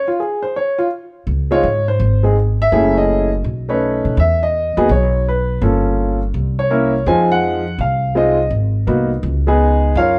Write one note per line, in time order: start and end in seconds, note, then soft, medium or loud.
0.08 0.19 F4 medium
0.20 0.42 G#4 medium
0.42 0.55 C5 medium
0.56 0.79 C#5 medium
0.78 0.86 F4 medium
1.27 1.61 C#2 medium
1.51 1.62 G#3 medium
1.51 1.62 C4 medium
1.51 1.63 D#4 medium
1.51 1.63 F4 medium
1.51 1.85 C#5 medium
1.63 1.97 G#2 medium
1.88 2.22 C5 medium
2.00 2.69 G#1 medium
2.23 2.35 G#3 medium
2.23 2.35 C4 medium
2.23 2.35 D#4 medium
2.23 2.35 G#4 medium
2.62 2.95 E5 loud
2.72 3.41 F#1 medium
2.72 3.27 A3 medium
2.72 3.28 C#4 medium
2.72 3.28 E4 medium
2.72 3.28 G#4 medium
2.97 3.31 D#5 medium
3.44 4.01 B1 medium
3.69 4.15 A3 medium
3.69 4.15 C#4 medium
3.69 4.15 D#4 medium
3.69 4.15 B4 medium
3.69 4.14 C#5 medium
4.05 4.16 B2 medium
4.17 4.73 E2 medium
4.17 4.41 E5 medium
4.43 4.87 D#5 medium
4.77 4.89 D#2 medium
4.77 4.88 B3 medium
4.77 4.88 D#4 medium
4.77 4.89 F#4 medium
4.77 4.89 G#4 medium
4.89 5.58 B1 medium
4.89 5.24 C#5 medium
5.28 5.61 B4 medium
5.61 6.30 G1 medium
5.61 6.17 A#3 medium
5.61 6.17 C#4 medium
5.61 6.17 F4 medium
5.61 6.18 A4 medium
6.34 7.03 C2 medium
6.59 7.04 C#5 medium
6.70 6.92 A#3 medium
6.70 6.92 C#4 medium
6.70 6.92 E4 medium
6.70 6.92 A#4 medium
7.06 7.75 F2 medium
7.06 7.63 F3 medium
7.06 7.62 G#3 medium
7.06 7.62 C4 medium
7.06 7.62 D#4 medium
7.06 7.30 G#5 medium
7.32 7.76 F#5 medium
7.78 8.48 C2 medium
7.78 8.14 F5 medium
8.15 8.37 G#3 medium
8.15 8.37 C4 medium
8.15 8.37 D#4 medium
8.15 8.37 F4 medium
8.15 8.50 D#5 medium
8.50 8.85 G#1 medium
8.87 9.21 C2 medium
8.87 9.09 A#3 medium
8.87 9.09 B3 medium
8.87 9.09 D#4 medium
8.87 9.09 F#4 medium
9.23 9.92 C#2 medium
9.47 9.93 G#3 medium
9.47 9.94 B3 medium
9.47 9.94 D#4 medium
9.47 9.94 G#4 medium
9.95 10.19 F#2 medium
9.95 10.19 F4 medium
9.95 10.19 A#4 medium
9.95 10.19 C#5 medium
9.95 10.19 F5 medium